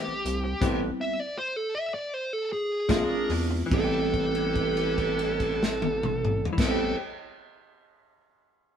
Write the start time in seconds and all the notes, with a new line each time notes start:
Already playing: E3 G3 A3 B3 C4 E4 G4
0.08 A1
0.25 C2, muted clean electric guitar stroke, closed hi-hat
0.44 muted clean electric guitar stroke
0.61 A1 E3 G3 B3 C4 E4 G4 B4, kick, closed hi-hat, crash
1.01 E5
1.20 D5
1.38 C5
1.56 A4
1.75 E5
1.94 D5
2.14 C5
2.33 A4
2.53 G#4
2.88 A#1 F3 G#3 C4 D4 F4 G#4 A#4, kick, snare, closed hi-hat
3.29 E2, muted clean electric guitar stroke, open hi-hat
3.51 muted clean electric guitar stroke
3.66 E3 G3
3.71 A1 B3 C4 E4 G4 A4 B4, kick, crash
3.84 G4
4.14 kick, crash
4.35 crash
4.55 kick, crash
4.77 crash
4.98 kick, crash
5.19 crash
5.40 kick, crash
5.63 snare
5.82 high tom
6.03 mid tom
6.25 mid tom
6.45 floor tom
6.53 E3 G3
6.57 A1 A3 B3 C4 E4 G4 A4 B4, kick, snare, crash
6.66 C4
6.71 G4